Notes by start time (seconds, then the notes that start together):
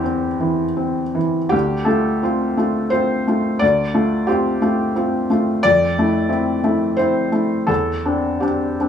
Already playing: E2 E3 C4 G4
0.04 C4
0.40 E3
0.77 C4
1.15 E3
1.49 D2 G4
1.85 A3 F4 A4
2.23 C4 F4
2.57 A3 F4
2.90 C4 F4 C5
3.27 A3 F4
3.59 D2 D5
3.94 A3 F4
4.27 C4 F4 G4
4.62 A3 F4
4.96 C4 F4
5.30 A3 F4
5.63 F2 D5
5.98 A3 E4
6.29 C4 E4
6.64 A3 E4
6.97 C4 E4 C5
7.32 A3 E4
7.67 E2 A4
8.06 C4 D4
8.40 C4 D4 G4
8.80 C4 D4